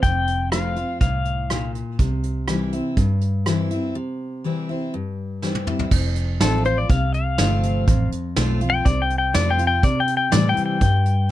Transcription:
0.03 fingered electric bass F1, steel-string acoustic guitar F2, pedal steel guitar G5, kick, closed hi-hat
0.27 closed hi-hat
0.52 steel-string acoustic guitar F3 A3 C4 F4, pedal steel guitar F5, cross-stick, closed hi-hat
0.76 steel-string acoustic guitar C4 F4, closed hi-hat
1.01 fingered electric bass C2, steel-string acoustic guitar A2, pedal steel guitar F5, kick, closed hi-hat
1.25 closed hi-hat
1.50 steel-string acoustic guitar A#2, cross-stick, closed hi-hat
1.75 closed hi-hat
1.99 fingered electric bass C2, steel-string acoustic guitar C3, kick, closed hi-hat
2.23 closed hi-hat
2.48 steel-string acoustic guitar E3 G3 C4 E4, cross-stick, closed hi-hat
2.73 steel-string acoustic guitar C4 E4, closed hi-hat
2.97 fingered electric bass G2, steel-string acoustic guitar G2, kick, closed hi-hat
3.21 closed hi-hat
3.46 steel-string acoustic guitar E3 G3 C4 E4, cross-stick, closed hi-hat
3.71 steel-string acoustic guitar C4 E4, closed hi-hat
3.95 steel-string acoustic guitar C3
4.44 steel-string acoustic guitar E3 G3 C4 E4
4.69 steel-string acoustic guitar C4 E4
4.94 steel-string acoustic guitar G2
5.42 steel-string acoustic guitar E3 G3 C4 E4, snare
5.55 high tom
5.67 steel-string acoustic guitar C4 E4, mid tom
5.79 floor tom
5.91 fingered electric bass F1, steel-string acoustic guitar F2, kick, crash
6.16 closed hi-hat
6.41 fingered electric bass A1, steel-string acoustic guitar F3 A3 C4 F4, pedal steel guitar A4, snare, closed hi-hat
6.65 steel-string acoustic guitar C4 F4, pedal steel guitar C5, closed hi-hat
6.78 pedal steel guitar D5
6.89 fingered electric bass C2, steel-string acoustic guitar C3, pedal steel guitar F5, kick, closed hi-hat
7.14 pedal steel guitar F5, closed hi-hat
7.38 fingered electric bass G1, steel-string acoustic guitar F3 A3 C4 F4, snare, closed hi-hat
7.63 closed hi-hat
7.88 fingered electric bass A1, steel-string acoustic guitar F2, kick, closed hi-hat
8.12 muted fingered electric bass stroke, closed hi-hat
8.36 fingered electric bass B1, steel-string acoustic guitar F3 A3 C4 F4, snare, closed hi-hat
8.61 steel-string acoustic guitar C4 F4, closed hi-hat
8.70 pedal steel guitar G5
8.85 fingered electric bass C2, steel-string acoustic guitar C3, pedal steel guitar D5, kick, closed hi-hat
9.02 pedal steel guitar G5
9.10 closed hi-hat
9.18 pedal steel guitar G5
9.34 fingered electric bass F2, steel-string acoustic guitar F3 A3 C4 F4, pedal steel guitar D5, snare, closed hi-hat
9.51 pedal steel guitar G5
9.58 steel-string acoustic guitar C4 F4, closed hi-hat
9.67 pedal steel guitar G5
9.83 fingered electric bass C3, steel-string acoustic guitar C3, pedal steel guitar D5, kick, closed hi-hat
10.00 pedal steel guitar G5
10.08 closed hi-hat
10.17 pedal steel guitar G5
10.32 fingered electric bass A2, steel-string acoustic guitar E3 G3 C4 E4, pedal steel guitar D5, snare, closed hi-hat
10.49 pedal steel guitar G5
10.57 muted fingered electric bass stroke, closed hi-hat
10.66 pedal steel guitar G5
10.81 fingered electric bass G2, steel-string acoustic guitar G2, kick, closed hi-hat
11.05 closed hi-hat

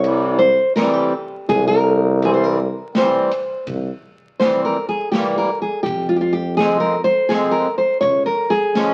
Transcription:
Already playing: tuba C2, nylon-string guitar C#5
0.03 accordion C3 E3 G3, ride
0.39 nylon-string guitar C5
0.76 accordion E3 G3 C4, nylon-string guitar A#4, snare, ride
0.93 nylon-string guitar G4
1.49 tuba C2, nylon-string guitar G#4, kick, ride
1.68 nylon-string guitar A#4
2.21 accordion E3 G3 C4, nylon-string guitar G#4, ride
2.34 nylon-string guitar C5
2.44 nylon-string guitar A#4
2.95 accordion E3 G3 C4, nylon-string guitar C5, snare, ride
3.31 ride
3.67 tuba C2, kick, ride
4.39 accordion E3 G3 C4, nylon-string guitar C5, snare, ride
4.65 nylon-string guitar A#4
4.89 nylon-string guitar G#4
5.12 accordion E3 G3 A#3, nylon-string guitar G4, snare, ride
5.38 nylon-string guitar A#4
5.62 nylon-string guitar G#4
5.83 tuba F2, nylon-string guitar G4, kick, ride
6.09 nylon-string guitar F4
6.16 nylon-string guitar G4
6.21 nylon-string guitar F4
6.33 nylon-string guitar G4
6.57 accordion F3 G#3 C4, nylon-string guitar G#4, snare, ride
6.80 nylon-string guitar A#4
7.04 nylon-string guitar C5
7.29 accordion F3 G#3 C4, nylon-string guitar G#4, snare, ride
7.51 nylon-string guitar A#4
7.78 nylon-string guitar C5
8.01 tuba C#2, nylon-string guitar C#5, kick, ride
8.26 nylon-string guitar A#4
8.50 nylon-string guitar G#4
8.74 accordion F3 G#3 C#4, snare, ride

